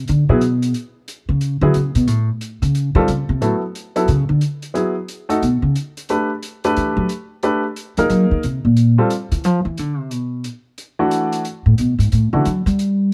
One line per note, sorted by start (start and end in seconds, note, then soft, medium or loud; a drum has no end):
0.08 0.28 D3 medium
0.08 closed hi-hat soft
0.29 0.71 B2 medium
0.29 0.40 F#3 medium
0.29 0.40 B3 medium
0.29 0.40 E4 medium
0.29 0.40 G#4 medium
0.41 closed hi-hat soft
0.62 closed hi-hat soft
0.74 closed hi-hat soft
1.08 closed hi-hat soft
1.29 1.60 C#3 medium
1.41 closed hi-hat soft
1.61 1.74 D3 loud
1.61 1.73 F#3 medium
1.61 1.73 B3 medium
1.61 1.73 E4 medium
1.61 1.74 G#4 medium
1.74 1.95 C#3 medium
1.74 closed hi-hat soft
1.95 2.07 B2 medium
1.95 closed hi-hat soft
2.07 2.28 A2 medium
2.07 closed hi-hat soft
2.41 closed hi-hat soft
2.62 2.93 C#3 medium
2.62 closed hi-hat soft
2.75 closed hi-hat soft
2.95 3.07 D#3 loud
2.95 3.07 G3 medium
2.95 3.07 C4 medium
2.95 3.07 F4 medium
2.95 3.07 A4 medium
3.08 3.28 C#3 medium
3.08 closed hi-hat soft
3.29 3.42 C3 medium
3.41 3.54 A2 medium
3.41 3.60 F#3 soft
3.41 3.61 B3 soft
3.41 3.61 E4 soft
3.41 3.61 A4 medium
3.41 closed hi-hat soft
3.75 closed hi-hat soft
3.96 4.07 F#3 medium
3.96 4.07 B3 medium
3.96 4.07 E4 medium
3.96 4.07 A4 medium
3.96 closed hi-hat soft
4.08 4.28 C#3 medium
4.08 closed hi-hat soft
4.29 4.41 D3 loud
4.41 closed hi-hat soft
4.62 closed hi-hat soft
4.74 4.94 F#3 medium
4.74 4.94 B3 soft
4.74 4.94 E4 soft
4.74 4.94 G#4 medium
4.74 closed hi-hat soft
5.08 closed hi-hat soft
5.29 5.41 A3 medium
5.29 5.41 D#4 medium
5.29 5.41 F#4 medium
5.29 5.41 A4 medium
5.29 closed hi-hat soft
5.42 5.62 B2 medium
5.42 closed hi-hat soft
5.62 5.75 C#3 medium
5.76 closed hi-hat soft
5.97 closed hi-hat soft
6.09 6.29 A3 medium
6.09 6.29 D4 soft
6.09 6.29 G4 soft
6.09 6.29 B4 medium
6.09 closed hi-hat soft
6.43 closed hi-hat medium
6.64 7.08 A3 medium
6.64 7.08 D4 medium
6.64 7.08 G4 medium
6.64 7.08 B4 medium
6.64 closed hi-hat soft
6.76 6.96 E3 medium
6.76 closed hi-hat soft
6.97 7.04 F#3 loud
7.09 closed hi-hat soft
7.43 7.62 A3 medium
7.43 7.62 D4 medium
7.43 7.63 G4 medium
7.43 7.63 B4 medium
7.43 closed hi-hat soft
7.76 closed hi-hat soft
7.97 8.09 F3 medium
7.97 8.42 A#3 medium
7.97 8.42 D#4 medium
7.97 8.42 G#4 medium
7.97 8.42 A#4 medium
7.97 closed hi-hat soft
8.10 8.31 F#3 loud
8.10 closed hi-hat soft
8.31 8.43 D#3 medium
8.43 8.64 C3 medium
8.43 closed hi-hat soft
8.65 8.96 A#2 medium
8.77 closed hi-hat soft
8.98 9.09 G3 medium
8.98 9.09 C4 medium
8.98 9.10 F4 medium
8.98 9.10 A4 medium
9.10 closed hi-hat medium
9.32 9.45 E3 medium
9.32 closed hi-hat soft
9.44 9.64 F3 medium
9.44 closed hi-hat soft
9.65 9.79 E3 medium
9.77 9.99 D3 medium
9.77 closed hi-hat soft
9.99 10.12 C3 medium
10.11 10.45 B2 medium
10.11 closed hi-hat soft
10.44 closed hi-hat soft
10.78 closed hi-hat soft
10.99 11.43 E3 medium
10.99 11.43 A3 medium
10.99 11.43 D4 medium
10.99 11.43 F#4 medium
11.11 closed hi-hat medium
11.32 closed hi-hat soft
11.45 closed hi-hat soft
11.66 11.78 A2 medium
11.78 11.98 B2 medium
11.78 closed hi-hat medium
11.99 12.11 G#2 medium
11.99 closed hi-hat soft
12.12 12.32 A2 medium
12.12 closed hi-hat soft
12.33 12.45 C#3 medium
12.33 12.44 E3 medium
12.33 12.44 A3 medium
12.33 12.44 D4 medium
12.33 12.44 F#4 medium
12.45 12.66 F#3 medium
12.45 closed hi-hat medium
12.66 13.13 G3 medium
12.66 closed hi-hat soft
12.79 closed hi-hat soft